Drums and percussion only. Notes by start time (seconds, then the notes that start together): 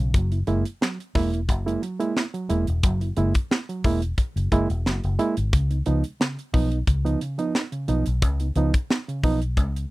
0.14 kick, closed hi-hat
0.32 closed hi-hat
0.47 closed hi-hat
0.65 closed hi-hat
0.82 snare
1.00 closed hi-hat
1.15 kick, snare, open hi-hat
1.34 closed hi-hat
1.49 kick, closed hi-hat
1.68 closed hi-hat
1.83 closed hi-hat
2.00 closed hi-hat
2.17 snare
2.34 closed hi-hat
2.50 closed hi-hat
2.67 closed hi-hat
2.83 kick, closed hi-hat
3.01 closed hi-hat
3.17 closed hi-hat
3.34 kick, closed hi-hat
3.51 snare
3.69 closed hi-hat
3.84 kick, open hi-hat
4.02 closed hi-hat
4.18 kick, closed hi-hat
4.37 closed hi-hat
4.52 kick, closed hi-hat
4.70 closed hi-hat
4.86 snare
5.04 closed hi-hat
5.19 closed hi-hat
5.37 closed hi-hat
5.53 kick, closed hi-hat
5.71 closed hi-hat
5.86 closed hi-hat
6.04 closed hi-hat
6.21 snare
6.39 closed hi-hat
6.54 kick, open hi-hat
6.72 closed hi-hat
6.87 kick, closed hi-hat
7.06 closed hi-hat
7.21 closed hi-hat
7.39 closed hi-hat
7.55 snare
7.72 closed hi-hat
7.88 closed hi-hat
8.06 closed hi-hat
8.22 kick, closed hi-hat
8.40 closed hi-hat
8.56 closed hi-hat
8.74 kick, closed hi-hat
8.90 snare
9.09 closed hi-hat
9.24 kick, open hi-hat
9.42 closed hi-hat
9.57 kick, closed hi-hat
9.76 closed hi-hat